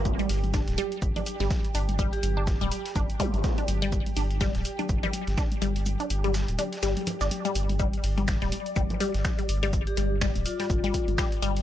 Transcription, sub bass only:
X:1
M:4/4
L:1/16
Q:"Swing 16ths" 1/4=124
K:Cm
V:1 name="Sub bass" clef=bass
G,,, z G,,,3 D,,, z2 G,,, z2 G,,, z2 G,,,2- | G,,, z G,,,3 D,,, z2 G,,, z2 G,,, z2 G,,,2- | G,,, z G,,,3 D,,, z2 G,,, z2 G,,, z2 G,,,2- | G,,, z G,,,3 D,,, z2 G,,, z2 G,,, z2 G,,,2- |
G,,, z G,,,3 D,,, z2 G,,, z2 G,,, z2 G,,,2- | G,,, z G,,,3 D,,, z2 G,,, z2 G,,, z2 G,,,2 |]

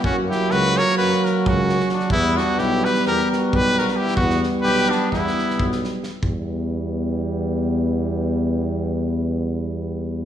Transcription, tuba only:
X:1
M:9/8
L:1/8
Q:3/8=88
K:none
V:1 name="Tuba" clef=bass
^F,,2 ^C,,2 F,, z C,,3 | E,,2 B,,,2 E,, z B,,,3 | E,,2 B,,,2 E,, z B,,,3 | E,,8- E,,- |
E,,8- E,, |]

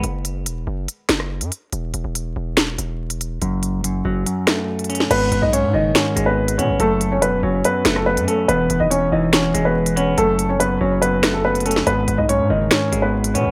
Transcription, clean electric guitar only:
X:1
M:4/4
L:1/8
Q:1/4=142
K:G#phr
V:1 name="Clean electric guitar" clef=bass
z8 | z8 | F,,2 F,, F, F,, A,2 C | G,,2 G,, D, G,, G,2 B, |
F,,2 F,, F, F,, A,2 C | E,,2 E,, E, E,, G,2 B, | F,,2 F,, F, F,, A,2 C | G,,2 G,, D, G,, G,2 B, |]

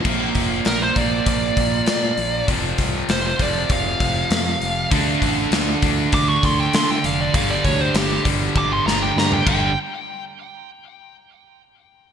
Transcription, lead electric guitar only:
X:1
M:4/4
L:1/16
Q:1/4=99
K:Gm
V:1 name="Lead electric guitar"
z4 B c d2 d8 | z4 c c d2 f8 | z8 d' ^c' =c' g c' g f d | f d ^c =c G2 z2 d' c' b g b g g2 |
z16 |]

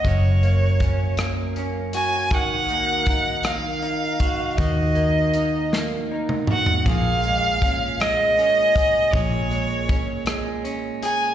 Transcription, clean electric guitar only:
X:1
M:6/8
L:1/8
Q:3/8=53
K:D#m
V:1 name="Clean electric guitar"
[F,,A,CF] A, C A, C F | [D,F] A, D A, D F | [D,F] A, D A, D F | [A,,G] G, C G, C G |
[A,,G] G, C G, C G |]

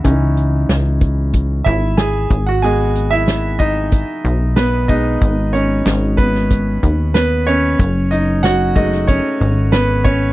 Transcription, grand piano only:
X:1
M:4/4
L:1/16
Q:1/4=93
K:G#phr
V:1 name="Grand piano"
z8 z2 [Ee]2 [Gg]3 [Ff] | [Gg]3 [Ee]3 [Dd]6 [B,B]2 d2- | d2 [Cc]4 [B,B]4 z2 [B,B]2 [Cc]2- | [Cc]2 [Dd]2 [Ff]2 [Dd]2 [Cc]4 [B,B]2 [Cc]2 |]
V:2 name="Grand piano"
[E,CD]2 z12 z2 | [G,B,d]6 z8 [G,B,D]2- | [G,B,D]4 z12 | z6 [G,A,F]2 z8 |]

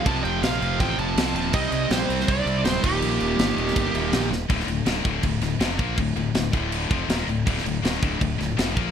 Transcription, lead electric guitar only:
X:1
M:4/4
L:1/8
Q:1/4=162
K:Dphr
V:1 name="Lead electric guitar"
a g f2 g a2 a | e2 c2 d2 c G- | G6- G z | z8 |
z8 | z8 |]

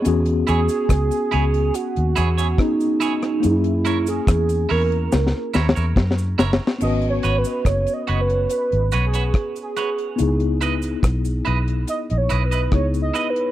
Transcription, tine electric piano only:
X:1
M:4/4
L:1/8
Q:1/4=71
K:G#m
V:1 name="Tine electric piano"
[B,CFG]6 [B,CFG]2 | [A,CEG]8 | [B,CFB]8 | [B,DEG]6 [B,DEG]2 |]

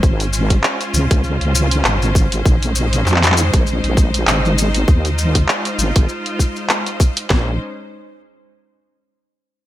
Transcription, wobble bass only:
X:1
M:4/4
L:1/16
Q:"Swing 16ths" 1/4=99
K:Bbm
V:1 name="Wobble bass" clef=bass
A,,,4 z2 D,, D,,2 D,,3 A,,,4 | B,,,4 F,,3 B,,,2 B,,,3 A,,,4 | E,,4 z2 A,,, A,,, z8 | B,,,2 z12 z2 |]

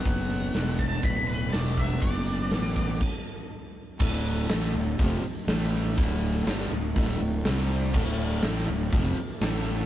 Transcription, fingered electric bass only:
X:1
M:4/4
L:1/8
Q:1/4=122
K:Dmix
V:1 name="Fingered electric bass" clef=bass
F,,,2 E,,,2 D,,,2 E,,,2 | F,,,2 A,,,2 z4 | D,,,2 A,,, D,,, =F,,, z A,,,2 | D,,,2 G,,, D,,, D,,, D,,, C,,2 |
D,,,2 A,,, D,,, =F,,, z A,,,2 |]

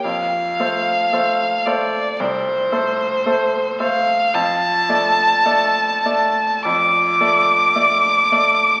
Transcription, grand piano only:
X:1
M:4/4
L:1/8
Q:1/4=55
K:Cmix
V:1 name="Grand piano"
F,, [A,Ac] [A,Ac] [A,Ac] C,, [A,Ac] [A,Ac] [A,Ac] | [K:Dm] F,, [A,Ad] [A,Ad] [A,Ad] F,, [A,Ad] [A,Ad] [A,Ad] |]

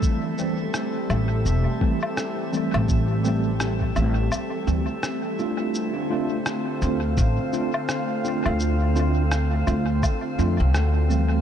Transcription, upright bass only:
X:1
M:4/4
L:1/16
Q:"Swing 16ths" 1/4=84
K:Dm
V:1 name="Upright bass" clef=bass
z6 A,,,2 E,,, z6 A,,,- | A,,,6 A,,,2 z2 D,, z4 z | z6 D,,2 A,,, z6 D,,- | D,,6 D,,2 z2 F,, C,, D,,4 |]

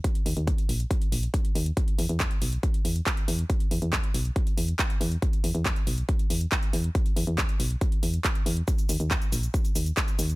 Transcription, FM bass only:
X:1
M:4/4
L:1/16
Q:1/4=139
K:Elyd
V:1 name="FM bass" clef=bass
z2 D,, D,,2 z A,,,2 z2 A,,,2 z2 D,,2 | z2 E,, E,,2 z B,,,2 z2 E,,2 z2 E,,2 | z2 E,, E,,2 z B,,,2 z2 E,,2 z2 E,,2 | z2 E,, E,,2 z B,,,2 z2 E,,2 z2 E,,2 |
z2 E,, E,,2 z B,,,2 z2 E,,2 z2 E,,2 | z2 D,, D,,2 z A,,,2 z2 D,,2 z2 D,,2 |]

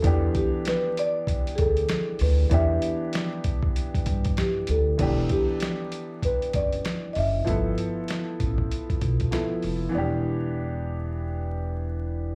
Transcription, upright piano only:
X:1
M:4/4
L:1/8
Q:"Swing 16ths" 1/4=97
K:Em
V:1 name="Upright piano"
[E,B,DG]8 | [E,B,DG]8 | [E,B,DG]8 | [=F,B,EA]6 [F,B,EA]2 |
[E,B,DG]8 |]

